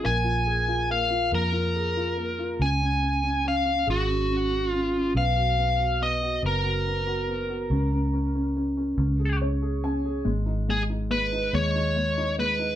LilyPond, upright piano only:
\new Staff \with { instrumentName = "Upright piano" } { \time 6/8 \key gis \dorian \tempo 4. = 47 << { r2. | r2. | r2. | r2 cis''8 gis''8 |
r2. | } \\ { ais16 eis'16 gis'16 eis'16 ais16 eis'16 ais16 eis'16 gis'16 eis'16 ais16 eis'16 | cis'16 cis'16 cis'16 cis'16 cis'16 cis'16 gis'16 cis'16 cis'16 cis'16 cis'16 cis'16 | b16 fis'16 b16 fis'16 b16 fis'16 b16 fis'16 b16 fis'16 b16 fis'16 | cis'16 cis'16 cis'16 cis'16 cis'16 cis'16 cis'16 gis'16 cis'16 gis'16 cis'16 gis'16 |
gis16 dis'16 gis16 dis'16 gis16 dis'16 gis16 dis'16 gis16 dis'16 gis16 dis'16 | } >> }